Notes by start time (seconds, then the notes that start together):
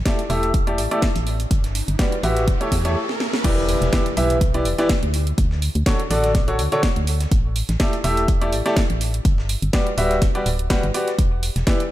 Already playing: riser
0.05 A3 E4 G4 A4 D5, kick, snare, closed hi-hat
0.19 closed hi-hat
0.30 E1 A3 E4 G4 A4 E5, closed hi-hat, open hi-hat
0.43 closed hi-hat
0.54 kick, closed hi-hat
0.67 A3 E4 G4 A4 D5, closed hi-hat
0.78 A1, closed hi-hat, open hi-hat
0.91 A3 E4 G4 A4 D5, closed hi-hat
1.02 kick, snare, closed hi-hat
1.16 A1, closed hi-hat
1.27 open hi-hat
1.40 closed hi-hat
1.51 G1, kick, closed hi-hat
1.64 snare, closed hi-hat
1.75 closed hi-hat, open hi-hat
1.88 G1, closed hi-hat
1.99 G3 F#4 G4 B4 D5, kick, snare, closed hi-hat
2.12 closed hi-hat
2.23 A1 F#4 G4 B4 E5, closed hi-hat, open hi-hat
2.37 snare, closed hi-hat
2.48 kick, closed hi-hat
2.61 A3 E4 G4 A4 C#5, closed hi-hat
2.72 E2, kick, closed hi-hat, open hi-hat
2.85 A3 E4 G4 A4 C#5, snare, closed hi-hat
3.09 snare
3.20 snare
3.33 snare
3.44 E1 E3 E4 G4 B4 D5, kick, closed hi-hat, crash, impact
3.69 closed hi-hat, open hi-hat
3.82 E1, snare, closed hi-hat
3.93 E3 E4 G4 B4 D5, kick, snare, closed hi-hat
4.06 closed hi-hat
4.17 B1 E3 E4 G4 B4 E5, closed hi-hat, open hi-hat
4.30 closed hi-hat
4.41 kick, closed hi-hat
4.54 E3 E4 G4 B4 D5, closed hi-hat
4.65 E1, closed hi-hat, open hi-hat
4.78 E3 E4 G4 B4 D5, snare, closed hi-hat
4.89 kick, snare, closed hi-hat, open hi-hat
5.03 D2, closed hi-hat
5.14 closed hi-hat, open hi-hat
5.27 closed hi-hat
5.38 D2, kick, closed hi-hat
5.51 snare
5.62 closed hi-hat, open hi-hat
5.75 D2, closed hi-hat
5.86 D3 D4 F#4 A4 C#5, kick, snare, closed hi-hat
6.00 closed hi-hat
6.10 A1 D3 D4 F#4 A4 D5, closed hi-hat, open hi-hat
6.24 snare, closed hi-hat
6.35 kick, snare, closed hi-hat
6.48 D3 D4 F#4 A4 C#5, closed hi-hat
6.59 D2, closed hi-hat, open hi-hat
6.72 D3 D4 F#4 A4 C#5, closed hi-hat
6.83 kick, snare, closed hi-hat
6.96 D2, closed hi-hat
7.07 closed hi-hat, open hi-hat
7.20 snare, closed hi-hat
7.31 A1, kick, closed hi-hat
7.56 closed hi-hat, open hi-hat
7.69 A1, snare, closed hi-hat
7.80 A3 E4 G4 A4 D5, kick, snare, closed hi-hat
7.93 closed hi-hat
8.04 E1 A3 E4 G4 A4 E5, closed hi-hat, open hi-hat
8.17 closed hi-hat
8.28 kick, closed hi-hat
8.41 A3 E4 G4 A4 D5, closed hi-hat
8.52 A1, closed hi-hat, open hi-hat
8.66 A3 E4 G4 A4 D5, snare, closed hi-hat
8.77 kick, snare, closed hi-hat, open hi-hat
8.90 A1, closed hi-hat
9.01 closed hi-hat, open hi-hat
9.14 closed hi-hat
9.25 G1, kick, closed hi-hat
9.38 snare
9.49 closed hi-hat, open hi-hat
9.62 G1, closed hi-hat
9.73 G3 F#4 G4 B4 D5, kick, snare, closed hi-hat
9.87 closed hi-hat
9.98 D1 G3 F#4 G4 B4 E5, closed hi-hat, open hi-hat
10.11 snare, closed hi-hat
10.22 kick, snare, closed hi-hat
10.35 G3 F#4 G4 B4 D5, closed hi-hat
10.46 D1, closed hi-hat, open hi-hat
10.59 closed hi-hat
10.70 G3 F#4 G4 B4 F#5, kick, snare, closed hi-hat
10.83 G1, closed hi-hat
10.94 F#4 G4 B4 D5, closed hi-hat, open hi-hat
11.08 snare, closed hi-hat
11.19 E1, kick, closed hi-hat
11.43 closed hi-hat, open hi-hat
11.56 E1, snare, closed hi-hat
11.67 E3 E4 G4 B4 D5, kick, snare, closed hi-hat
11.80 closed hi-hat